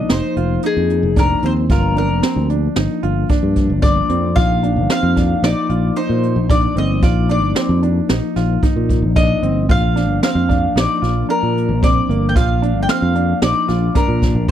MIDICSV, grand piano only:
0, 0, Header, 1, 2, 480
1, 0, Start_track
1, 0, Tempo, 532860
1, 1527, Time_signature, 5, 2, 24, 8
1, 13071, End_track
2, 0, Start_track
2, 0, Title_t, "Grand piano"
2, 0, Program_c, 0, 0
2, 82, Note_on_c, 0, 63, 69
2, 297, Note_off_c, 0, 63, 0
2, 332, Note_on_c, 0, 65, 62
2, 543, Note_off_c, 0, 65, 0
2, 572, Note_on_c, 0, 63, 66
2, 996, Note_off_c, 0, 63, 0
2, 1051, Note_on_c, 0, 62, 69
2, 1262, Note_off_c, 0, 62, 0
2, 1294, Note_on_c, 0, 60, 66
2, 1504, Note_off_c, 0, 60, 0
2, 1537, Note_on_c, 0, 65, 80
2, 1745, Note_off_c, 0, 65, 0
2, 1768, Note_on_c, 0, 62, 70
2, 1980, Note_off_c, 0, 62, 0
2, 2006, Note_on_c, 0, 60, 72
2, 2219, Note_off_c, 0, 60, 0
2, 2250, Note_on_c, 0, 62, 62
2, 2462, Note_off_c, 0, 62, 0
2, 2493, Note_on_c, 0, 63, 70
2, 2703, Note_off_c, 0, 63, 0
2, 2729, Note_on_c, 0, 65, 70
2, 2941, Note_off_c, 0, 65, 0
2, 2971, Note_on_c, 0, 62, 74
2, 3395, Note_off_c, 0, 62, 0
2, 3450, Note_on_c, 0, 62, 66
2, 3662, Note_off_c, 0, 62, 0
2, 3686, Note_on_c, 0, 60, 63
2, 3899, Note_off_c, 0, 60, 0
2, 3926, Note_on_c, 0, 65, 84
2, 4139, Note_off_c, 0, 65, 0
2, 4171, Note_on_c, 0, 62, 67
2, 4383, Note_off_c, 0, 62, 0
2, 4414, Note_on_c, 0, 60, 73
2, 4624, Note_off_c, 0, 60, 0
2, 4652, Note_on_c, 0, 62, 64
2, 4863, Note_off_c, 0, 62, 0
2, 4896, Note_on_c, 0, 63, 70
2, 5105, Note_off_c, 0, 63, 0
2, 5129, Note_on_c, 0, 65, 67
2, 5341, Note_off_c, 0, 65, 0
2, 5373, Note_on_c, 0, 63, 70
2, 5796, Note_off_c, 0, 63, 0
2, 5849, Note_on_c, 0, 62, 68
2, 6061, Note_off_c, 0, 62, 0
2, 6089, Note_on_c, 0, 60, 62
2, 6301, Note_off_c, 0, 60, 0
2, 6329, Note_on_c, 0, 65, 79
2, 6542, Note_off_c, 0, 65, 0
2, 6569, Note_on_c, 0, 62, 67
2, 6781, Note_off_c, 0, 62, 0
2, 6802, Note_on_c, 0, 60, 74
2, 7018, Note_off_c, 0, 60, 0
2, 7051, Note_on_c, 0, 62, 67
2, 7262, Note_off_c, 0, 62, 0
2, 7291, Note_on_c, 0, 63, 66
2, 7503, Note_off_c, 0, 63, 0
2, 7532, Note_on_c, 0, 65, 69
2, 7743, Note_off_c, 0, 65, 0
2, 7772, Note_on_c, 0, 63, 70
2, 8196, Note_off_c, 0, 63, 0
2, 8250, Note_on_c, 0, 62, 71
2, 8462, Note_off_c, 0, 62, 0
2, 8491, Note_on_c, 0, 60, 60
2, 8703, Note_off_c, 0, 60, 0
2, 8730, Note_on_c, 0, 65, 80
2, 8942, Note_off_c, 0, 65, 0
2, 8971, Note_on_c, 0, 62, 65
2, 9182, Note_off_c, 0, 62, 0
2, 9213, Note_on_c, 0, 60, 69
2, 9423, Note_off_c, 0, 60, 0
2, 9447, Note_on_c, 0, 62, 67
2, 9660, Note_off_c, 0, 62, 0
2, 9690, Note_on_c, 0, 63, 66
2, 9902, Note_off_c, 0, 63, 0
2, 9925, Note_on_c, 0, 65, 65
2, 10139, Note_off_c, 0, 65, 0
2, 10168, Note_on_c, 0, 62, 70
2, 10593, Note_off_c, 0, 62, 0
2, 10651, Note_on_c, 0, 60, 66
2, 10862, Note_off_c, 0, 60, 0
2, 10893, Note_on_c, 0, 58, 64
2, 11103, Note_off_c, 0, 58, 0
2, 11129, Note_on_c, 0, 65, 81
2, 11341, Note_off_c, 0, 65, 0
2, 11370, Note_on_c, 0, 62, 71
2, 11581, Note_off_c, 0, 62, 0
2, 11609, Note_on_c, 0, 60, 73
2, 11821, Note_off_c, 0, 60, 0
2, 11849, Note_on_c, 0, 62, 64
2, 12061, Note_off_c, 0, 62, 0
2, 12093, Note_on_c, 0, 63, 71
2, 12303, Note_off_c, 0, 63, 0
2, 12324, Note_on_c, 0, 65, 69
2, 12538, Note_off_c, 0, 65, 0
2, 12565, Note_on_c, 0, 62, 77
2, 12991, Note_off_c, 0, 62, 0
2, 13071, End_track
0, 0, End_of_file